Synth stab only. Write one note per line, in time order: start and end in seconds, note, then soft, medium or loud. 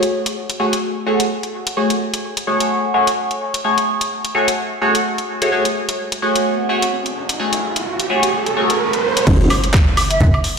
0.60 0.73 A3 medium
0.60 0.73 F#4 medium
0.60 0.73 G#4 medium
0.60 0.73 C#5 medium
1.06 1.20 A3 medium
1.06 1.20 F#4 medium
1.06 1.20 G#4 medium
1.06 1.20 C#5 medium
1.77 1.90 A3 medium
1.77 1.90 F#4 medium
1.77 1.90 G#4 medium
1.77 1.90 C#5 loud
2.47 2.92 A3 medium
2.47 2.92 F#4 medium
2.47 2.92 G#4 medium
2.47 2.92 C#5 medium
2.94 3.07 A3 medium
2.94 3.07 F#4 medium
2.94 3.07 G#4 medium
2.94 3.07 C#5 loud
3.64 3.78 A3 medium
3.64 3.77 F#4 medium
3.64 3.77 G#4 medium
3.64 3.78 C#5 medium
4.35 4.48 A3 medium
4.35 4.48 F#4 medium
4.35 4.48 G#4 medium
4.35 4.48 C#5 medium
4.82 4.95 A3 loud
4.82 4.95 F#4 medium
4.82 4.95 G#4 medium
4.82 4.95 C#5 loud
5.42 5.49 A3 medium
5.42 5.49 F#4 medium
5.42 5.49 G#4 medium
5.42 5.49 C#5 medium
5.52 5.65 A3 medium
5.52 5.65 F#4 medium
5.52 5.65 G#4 medium
5.52 5.65 C#5 medium
6.22 6.67 A3 medium
6.22 6.67 F#4 medium
6.22 6.67 G#4 medium
6.22 6.67 C#5 medium
6.69 6.82 A3 medium
6.69 6.82 F#4 medium
6.69 6.82 G#4 medium
6.69 6.82 C#5 medium
7.39 7.53 A3 medium
7.39 7.53 F#4 medium
7.39 7.53 G#4 medium
7.39 7.53 C#5 medium
8.10 8.23 A3 medium
8.10 8.23 F#4 medium
8.10 8.23 G#4 medium
8.10 8.23 C#5 medium
8.57 8.70 A3 medium
8.57 8.70 F#4 medium
8.57 8.70 G#4 medium
8.57 8.70 C#5 loud